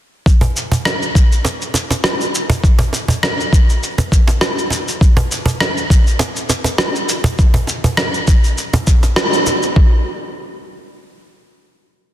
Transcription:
0.26 kick loud
0.26 shaker soft
0.41 cajon bass medium
0.41 shaker soft
0.57 shaker medium
0.72 cajon bass medium
0.72 shaker soft
0.85 cross-stick loud
0.85 shaker soft
1.02 shaker soft
1.15 kick loud
1.15 shaker medium
1.32 shaker soft
1.45 cajon slap medium
1.45 shaker soft
1.62 shaker soft
1.74 cajon slap medium
1.74 shaker medium
1.91 cajon slap medium
1.91 shaker soft
2.04 cross-stick loud
2.04 shaker soft
2.21 shaker soft
2.35 shaker medium
2.50 cajon bass medium
2.50 shaker soft
2.64 kick loud
2.64 shaker soft
2.79 cajon bass medium
2.79 shaker soft
2.93 cajon slap medium
2.93 shaker medium
3.08 cajon bass medium
3.08 shaker soft
3.23 cross-stick loud
3.23 shaker soft
3.40 shaker soft
3.53 kick loud
3.53 shaker medium
3.69 shaker soft
3.83 shaker soft
3.98 cajon bass medium
3.98 cajon slap medium
3.98 shaker soft
4.12 kick loud
4.12 shaker medium
4.28 cajon slap medium
4.28 shaker soft
4.41 cross-stick loud
4.41 shaker soft
4.58 shaker soft
4.70 cajon slap medium
4.70 shaker medium
4.88 shaker soft
5.01 kick loud
5.01 shaker soft
5.17 cajon bass medium
5.17 shaker soft
5.32 shaker medium
5.46 cajon bass medium
5.46 shaker soft
5.60 cross-stick loud
5.60 shaker soft
5.77 shaker soft
5.90 kick loud
5.90 shaker medium
6.07 shaker soft
6.19 cajon slap medium
6.19 shaker soft
6.36 shaker soft
6.49 cajon slap medium
6.49 shaker medium
6.64 cajon slap medium
6.64 shaker soft
6.78 cross-stick loud
6.78 shaker soft
6.96 shaker soft
7.09 shaker medium
7.24 cajon bass loud
7.24 shaker soft
7.39 kick loud
7.39 shaker soft
7.54 cajon bass medium
7.54 shaker soft
7.67 cajon slap medium
7.67 shaker medium
7.84 cajon bass medium
7.84 shaker soft
7.97 cross-stick loud
7.97 shaker soft
8.14 shaker soft
8.28 kick loud
8.28 shaker medium
8.44 shaker soft
8.58 shaker soft
8.73 cajon bass medium
8.73 cajon slap medium
8.73 shaker soft
8.87 kick loud
8.87 shaker medium
9.03 cajon slap medium
9.03 shaker soft
9.16 cross-stick medium
9.16 shaker soft
9.33 shaker soft
9.46 cajon slap soft
9.46 shaker medium
9.63 shaker soft
9.76 kick loud

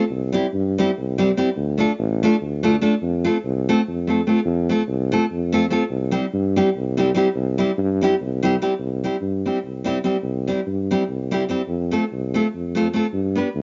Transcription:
0.10 0.36 C2 medium
0.33 0.45 G3 medium
0.33 0.45 C4 medium
0.33 0.46 E4 medium
0.33 0.46 G4 medium
0.53 0.79 G2 loud
0.78 0.89 G3 medium
0.78 0.90 C4 medium
0.78 0.90 E4 medium
0.78 0.90 G4 medium
0.98 1.33 C2 medium
1.18 1.30 G3 medium
1.18 1.30 C4 medium
1.18 1.30 E4 medium
1.18 1.31 G4 medium
1.37 1.48 G3 medium
1.37 1.49 C4 medium
1.37 1.49 E4 medium
1.37 1.49 G4 medium
1.56 1.82 D2 medium
1.78 1.90 A3 medium
1.78 1.91 D4 medium
1.78 1.91 F4 medium
1.78 1.92 A4 medium
1.99 2.25 A1 loud
2.23 2.35 A3 medium
2.23 2.35 D4 medium
2.23 2.35 F4 medium
2.23 2.36 A4 medium
2.41 2.77 D2 medium
2.63 2.75 A3 medium
2.63 2.75 D4 medium
2.63 2.75 F4 medium
2.63 2.75 A4 medium
2.81 2.93 A3 medium
2.81 2.94 D4 medium
2.81 2.94 F4 medium
2.81 2.94 A4 medium
3.02 3.28 F2 loud
3.24 3.36 A3 medium
3.24 3.37 C4 medium
3.24 3.36 F4 medium
3.24 3.37 A4 medium
3.45 3.71 C2 loud
3.69 3.80 A3 medium
3.69 3.80 C4 medium
3.69 3.80 F4 medium
3.69 3.80 A4 medium
3.88 4.23 F2 medium
4.07 4.19 A3 medium
4.07 4.20 C4 medium
4.07 4.20 F4 medium
4.07 4.21 A4 medium
4.27 4.38 A3 medium
4.27 4.39 C4 medium
4.27 4.39 F4 medium
4.27 4.39 A4 medium
4.45 4.72 F2 loud
4.69 4.81 A3 medium
4.69 4.81 C4 medium
4.69 4.82 F4 medium
4.69 4.82 A4 medium
4.88 5.14 C2 loud
5.12 5.24 A3 medium
5.12 5.24 C4 medium
5.12 5.25 F4 medium
5.12 5.25 A4 medium
5.31 5.67 F2 medium
5.52 5.64 A3 medium
5.52 5.65 C4 medium
5.52 5.65 F4 medium
5.52 5.65 A4 medium
5.70 5.82 A3 medium
5.70 5.83 C4 medium
5.70 5.83 F4 medium
5.70 5.83 A4 medium
5.90 6.16 C2 medium
6.11 6.25 G3 medium
6.11 6.25 C4 medium
6.11 6.25 E4 medium
6.11 6.25 G4 medium
6.34 6.60 G2 loud
6.56 6.68 G3 medium
6.56 6.68 C4 medium
6.56 6.69 E4 medium
6.56 6.69 G4 medium
6.76 7.11 C2 medium
6.97 7.09 G3 medium
6.97 7.09 C4 medium
6.97 7.09 E4 medium
6.97 7.10 G4 medium
7.14 7.27 G3 medium
7.14 7.27 C4 medium
7.14 7.27 E4 medium
7.14 7.28 G4 medium
7.36 7.61 C2 loud
7.58 7.70 G3 medium
7.58 7.70 C4 medium
7.58 7.70 E4 medium
7.58 7.71 G4 medium
7.78 8.04 G2 loud
8.01 8.13 G3 medium
8.01 8.14 C4 medium
8.01 8.14 E4 medium
8.01 8.14 G4 medium
8.21 8.56 C2 medium
8.42 8.54 G3 medium
8.42 8.54 C4 medium
8.42 8.54 E4 medium
8.42 8.55 G4 medium
8.62 8.72 G3 medium
8.62 8.72 C4 medium
8.62 8.73 E4 medium
8.62 8.73 G4 medium
8.79 9.05 C2 medium
9.03 9.15 G3 medium
9.03 9.15 C4 medium
9.03 9.15 E4 soft
9.03 9.15 G4 medium
9.21 9.47 G2 medium
9.46 9.57 G3 medium
9.46 9.57 C4 medium
9.46 9.58 E4 medium
9.46 9.58 G4 medium
9.65 10.00 C2 medium
9.84 9.97 G3 medium
9.84 9.97 C4 medium
9.84 9.97 E4 medium
9.84 9.98 G4 medium
10.04 10.16 G3 medium
10.04 10.16 C4 medium
10.04 10.17 E4 medium
10.04 10.16 G4 medium
10.23 10.49 C2 medium
10.47 10.59 G3 medium
10.47 10.59 C4 medium
10.47 10.60 E4 medium
10.47 10.60 G4 medium
10.66 10.92 G2 medium
10.91 11.02 G3 medium
10.91 11.02 C4 medium
10.91 11.03 E4 medium
10.91 11.03 G4 medium
11.09 11.44 C2 medium
11.31 11.42 G3 medium
11.31 11.43 C4 medium
11.31 11.43 E4 medium
11.31 11.44 G4 medium
11.49 11.60 G3 medium
11.49 11.61 C4 medium
11.49 11.61 E4 medium
11.49 11.61 G4 medium
11.68 11.94 F2 medium
11.92 12.03 A3 medium
11.92 12.04 C4 soft
11.92 12.04 F4 medium
11.92 12.04 A4 medium
12.12 12.38 C2 medium
12.34 12.46 A3 medium
12.34 12.46 C4 medium
12.34 12.47 F4 medium
12.34 12.47 A4 medium
12.54 12.89 F2 medium
12.75 12.86 A3 medium
12.75 12.87 C4 medium
12.75 12.87 F4 medium
12.75 12.87 A4 medium
12.93 13.05 A3 medium
12.93 13.05 C4 medium
12.93 13.05 F4 medium
12.93 13.06 A4 medium
13.13 13.39 G2 loud
13.35 13.47 B3 medium
13.35 13.48 D4 medium
13.35 13.48 G4 medium
13.35 13.48 B4 medium
13.55 13.62 D2 loud

